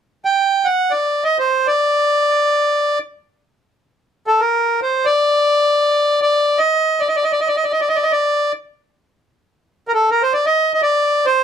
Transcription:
0.25 0.67 G5 medium
0.65 0.92 F#5 medium
0.91 1.24 D5 medium
1.24 1.38 D#5 medium
1.39 1.67 C5 medium
1.67 2.99 D5 medium
4.27 4.41 A4 medium
4.40 4.80 A#4 medium
4.82 5.06 C5 medium
5.05 6.20 D5 medium
6.22 6.59 D5 medium
6.58 7.01 D#5 medium
7.00 7.08 D5 medium
7.08 7.16 D#5 medium
7.16 7.24 D5 medium
7.23 7.32 D#5 medium
7.32 7.40 D5 medium
7.40 7.48 D#5 medium
7.48 7.56 D5 medium
7.57 7.65 D#5 medium
7.64 7.72 D5 medium
7.72 7.81 D#5 medium
7.81 7.89 D5 medium
7.89 7.97 D#5 medium
7.96 8.04 D5 medium
8.03 8.12 D#5 medium
8.11 8.52 D5 medium
9.88 9.92 A#4 soft
9.94 10.10 A4 medium
10.11 10.22 A#4 medium
10.22 10.33 C5 medium
10.33 10.46 D5 medium
10.46 10.72 D#5 medium
10.74 10.81 D#5 soft
10.82 11.26 D5 medium
11.26 11.44 C5 medium

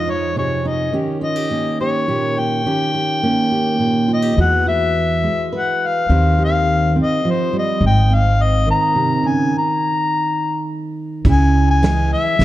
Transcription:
0.00 0.93 F2 soft
0.00 0.90 F3 soft
0.00 0.94 G#3 soft
0.00 0.36 G#4 soft
0.00 0.12 D#5 medium
0.07 0.65 D#4 soft
0.07 0.37 C#5 medium
0.36 0.90 C3 soft
0.36 0.90 G#4 soft
0.36 0.69 C#5 medium
0.65 0.93 D#4 soft
0.65 0.95 D#5 medium
0.92 2.65 D#3 soft
0.92 1.51 C#4 soft
0.92 1.21 G4 soft
1.21 1.36 F4 soft
1.21 1.76 D#5 medium
1.36 1.79 G4 soft
1.51 2.62 A#3 soft
1.51 2.62 C#4 soft
1.81 2.07 G4 soft
1.81 2.41 C#5 medium
2.08 2.65 A#2 soft
2.08 2.37 G4 soft
2.38 2.63 G4 soft
2.38 4.10 G5 medium
2.66 4.36 D#3 soft
2.66 3.23 C#4 soft
2.66 2.93 G4 soft
2.94 3.50 G4 soft
3.23 4.35 A#3 soft
3.23 4.35 C#4 soft
3.51 3.78 G4 soft
3.79 4.36 A#2 soft
3.79 4.08 G4 soft
4.08 4.22 F4 soft
4.13 4.38 D#5 medium
4.22 4.37 G4 soft
4.36 5.27 E2 medium
4.36 6.06 E3 medium
4.36 5.22 G#3 soft
4.36 4.65 F#4 soft
4.36 5.51 B4 medium
4.40 4.66 F#5 medium
4.67 6.06 F#4 soft
4.67 5.49 E5 medium
5.23 6.06 G#3 soft
5.52 6.06 B4 soft
5.57 5.88 F#5 medium
5.86 6.41 F5 medium
6.09 6.98 D#2 medium
6.09 7.24 D#3 medium
6.09 6.95 C4 soft
6.09 6.37 G4 soft
6.09 7.79 C5 medium
6.38 7.78 G4 soft
6.44 6.95 F5 medium
6.96 7.78 C4 soft
7.02 7.32 D#5 medium
7.25 7.53 F3 medium
7.31 7.56 C5 medium
7.53 7.82 G3 soft
7.59 7.83 D#5 medium
7.81 8.70 G#1 medium
7.81 9.50 G#2 medium
7.87 8.16 G5 medium
8.10 9.50 C4 soft
8.15 8.44 F5 medium
8.42 8.69 D#5 medium
8.66 11.25 D#3 medium
8.71 9.29 A#5 medium
8.95 9.23 C3 medium
9.23 9.53 C#3 medium
9.27 9.55 G#5 medium
9.58 10.66 A#5 medium
11.25 12.14 C#2 medium
11.25 11.83 C#3 medium
11.25 12.45 E4 medium
11.25 kick medium
11.25 ride soft
11.30 11.68 G#5 medium
11.71 12.10 G#5 medium
11.82 12.38 E3 medium
11.82 12.45 G#3 medium
11.82 snare medium
11.82 ride soft
12.13 12.45 E5 medium
12.39 12.45 G#1 medium
12.39 12.45 E3 medium
12.39 snare medium
12.39 ride soft

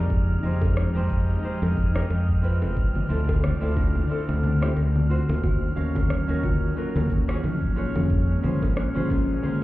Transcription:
0.00 0.35 F2 medium
0.00 0.40 D#4 medium
0.00 0.40 G4 medium
0.00 0.40 G#4 medium
0.00 0.41 D5 medium
0.00 9.64 F6 medium
0.10 2.74 F3 medium
0.10 2.74 G#3 medium
0.10 2.74 D#5 medium
0.10 2.74 G5 medium
0.10 kick loud
0.10 shaker soft
0.43 0.84 F2 medium
0.43 0.91 D#4 medium
0.43 0.91 G4 medium
0.43 0.92 G#4 medium
0.43 0.92 C5 medium
0.43 shaker medium
0.62 kick loud
0.62 high bongo medium
0.62 shaker soft
0.77 cross-stick medium
0.77 shaker soft
0.94 1.35 F2 medium
0.94 1.39 D#4 medium
0.94 1.40 G4 medium
0.94 1.40 G#4 medium
0.94 1.41 C5 medium
1.10 kick medium
1.10 shaker medium
1.29 shaker soft
1.42 1.90 D#4 medium
1.42 1.91 G4 medium
1.42 1.91 G#4 medium
1.42 1.92 C5 medium
1.42 shaker soft
1.62 2.01 F2 medium
1.62 high bongo medium
1.77 kick loud
1.77 shaker medium
1.94 2.03 D#4 medium
1.94 2.04 G4 medium
1.94 2.04 G#4 medium
1.94 2.05 A#4 medium
1.94 cross-stick medium
1.94 shaker soft
2.10 2.64 F2 medium
2.10 high bongo medium
2.10 shaker soft
2.29 kick medium
2.42 3.06 C4 medium
2.42 3.06 E4 medium
2.42 3.07 F4 medium
2.42 3.07 B4 medium
2.42 shaker medium
2.62 2.71 F1 medium
2.62 high bongo medium
2.62 shaker soft
2.77 5.41 D3 medium
2.77 5.41 C4 medium
2.77 5.41 D5 medium
2.77 kick loud
2.77 shaker soft
2.96 low conga medium
3.09 3.51 D2 medium
3.09 3.57 C4 medium
3.09 3.58 E4 medium
3.09 3.58 F4 medium
3.09 3.58 A4 medium
3.09 shaker medium
3.29 kick medium
3.29 high bongo medium
3.29 shaker soft
3.43 3.74 A3 medium
3.43 cross-stick medium
3.43 low conga medium
3.43 shaker soft
3.61 4.01 D2 medium
3.61 4.06 C4 medium
3.61 4.06 E4 medium
3.61 4.07 F4 medium
3.61 4.07 A4 medium
3.77 3.97 D4 medium
3.77 kick loud
3.77 high bongo medium
3.77 shaker medium
3.96 low conga medium
3.96 shaker soft
4.09 4.57 C4 medium
4.09 4.58 E4 medium
4.09 4.58 F4 medium
4.09 4.58 A4 medium
4.09 shaker soft
4.29 4.68 D2 medium
4.29 high bongo medium
4.43 4.74 A3 medium
4.43 low conga medium
4.43 shaker medium
4.61 4.70 C4 medium
4.61 4.71 E4 medium
4.61 4.71 F4 medium
4.61 4.71 G4 loud
4.61 cross-stick medium
4.61 shaker soft
4.76 5.18 D2 medium
4.76 5.09 D4 medium
4.76 high bongo medium
4.76 shaker soft
4.96 low conga medium
5.09 5.42 A3 medium
5.09 5.73 F4 medium
5.09 5.74 F#4 medium
5.09 5.74 C5 medium
5.09 shaker medium
5.29 5.68 D#2 medium
5.29 high bongo medium
5.29 shaker soft
5.44 7.75 D#3 medium
5.44 7.75 F#3 medium
5.44 9.64 C#4 medium
5.44 5.75 F#4 loud
5.44 kick loud
5.44 low conga medium
5.44 shaker soft
5.75 6.18 D#2 medium
5.75 6.24 C#4 medium
5.75 6.25 F#4 medium
5.75 6.25 A#4 medium
5.75 6.24 F5 medium
5.75 shaker medium
5.95 kick medium
5.95 high bongo medium
5.95 low conga medium
5.95 shaker soft
6.10 cross-stick medium
6.10 shaker soft
6.28 6.68 D#2 medium
6.28 6.73 C#4 medium
6.28 6.73 F#4 medium
6.28 6.74 A#4 loud
6.28 6.73 F5 medium
6.43 6.64 F4 medium
6.43 kick loud
6.43 low conga medium
6.43 shaker medium
6.63 shaker soft
6.76 7.25 F#3 medium
6.76 7.07 A#3 medium
6.76 7.24 C#4 medium
6.76 7.24 F4 medium
6.76 7.25 A#4 medium
6.76 shaker soft
6.95 7.35 D#2 medium
6.95 high bongo medium
6.95 low conga medium
7.10 kick medium
7.10 shaker medium
7.28 7.37 C#4 medium
7.28 7.37 F4 medium
7.28 7.38 F#4 medium
7.28 7.38 G#4 loud
7.28 cross-stick medium
7.28 shaker soft
7.44 7.84 A#1 medium
7.44 7.76 D#4 medium
7.44 high bongo medium
7.44 low conga medium
7.44 shaker soft
7.62 kick medium
7.76 9.64 G#3 medium
7.76 8.09 A#3 medium
7.76 9.64 A#3 medium
7.76 8.39 C#4 medium
7.76 8.40 F4 medium
7.76 8.40 G#4 medium
7.76 8.41 C#5 medium
7.76 shaker medium
7.95 8.35 F2 medium
7.95 high bongo medium
7.95 low conga medium
7.95 shaker soft
8.10 kick loud
8.10 shaker soft
8.42 8.84 A#1 medium
8.42 8.91 C#4 medium
8.42 8.91 F4 medium
8.42 8.91 G#4 medium
8.42 8.92 C5 medium
8.42 low conga medium
8.42 shaker medium
8.62 kick medium
8.62 high bongo medium
8.62 shaker soft
8.77 9.07 A#3 medium
8.77 cross-stick medium
8.77 shaker soft
8.94 9.35 A#1 medium
8.94 9.39 C#4 medium
8.94 9.40 F4 medium
8.94 9.40 G#4 medium
8.94 9.41 C5 loud
8.94 low conga medium
9.10 9.30 C#4 medium
9.10 kick medium
9.10 high bongo medium
9.10 shaker medium
9.29 shaker soft
9.42 9.64 C#4 medium
9.42 9.64 F4 medium
9.42 9.64 G#4 medium
9.42 9.64 C5 medium
9.42 low conga medium
9.42 shaker soft

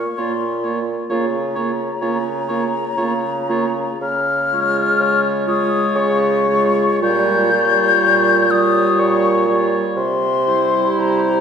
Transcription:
0.00 0.20 C#6 medium
0.17 1.00 A#2 medium
0.17 0.34 A#3 medium
0.17 0.34 F4 medium
0.17 0.33 C#5 medium
0.17 0.85 C6 medium
0.63 0.81 A#3 medium
0.63 0.81 F4 medium
0.63 0.79 C#5 medium
1.10 1.92 C#3 medium
1.10 1.26 A#3 medium
1.10 1.27 F4 medium
1.10 1.26 C#5 medium
1.10 3.98 A#5 loud
1.55 1.72 A#3 medium
1.55 1.73 F4 medium
1.55 1.71 C#5 medium
2.01 2.86 C#3 medium
2.01 2.19 A#3 medium
2.01 2.18 F4 medium
2.01 2.17 C#5 medium
2.48 2.66 A#3 medium
2.48 2.65 F4 medium
2.48 2.64 C#5 medium
2.97 3.90 C#3 medium
2.97 3.14 A#3 medium
2.97 3.14 F4 medium
2.97 3.13 C#5 medium
3.49 3.65 A#3 medium
3.49 3.66 F4 medium
3.49 3.66 C#5 medium
4.01 4.89 C#3 medium
4.01 5.20 F6 loud
4.52 5.46 G#3 medium
4.52 5.46 F4 medium
4.52 5.46 C#5 medium
5.00 5.84 C#3 medium
5.48 6.46 G#3 medium
5.48 6.46 F4 medium
5.48 6.46 C#5 medium
5.48 5.98 D#6 loud
5.96 6.90 C#3 loud
5.96 7.02 C#6 loud
6.48 7.02 G#3 medium
6.48 7.01 F4 medium
6.48 7.02 C#5 medium
7.02 7.91 A#2 loud
7.02 7.53 G3 medium
7.02 7.52 F4 medium
7.02 7.53 C#5 medium
7.02 8.52 G6 loud
7.53 8.49 G3 medium
7.53 8.49 F4 medium
7.53 8.49 C#5 medium
8.02 8.88 A#2 loud
8.50 9.46 G3 medium
8.50 9.46 F4 medium
8.50 9.46 C#5 medium
8.50 9.01 D#6 loud
8.99 9.85 A#2 loud
8.99 9.69 C#6 loud
9.47 9.96 G3 medium
9.47 9.95 F4 medium
9.47 9.95 C#5 medium
9.96 10.86 C3 loud
9.96 11.01 C6 loud
10.46 11.40 G3 medium
10.46 11.40 E4 medium
10.46 11.40 C5 medium
10.98 11.40 C3 loud
10.98 11.40 A#5 loud

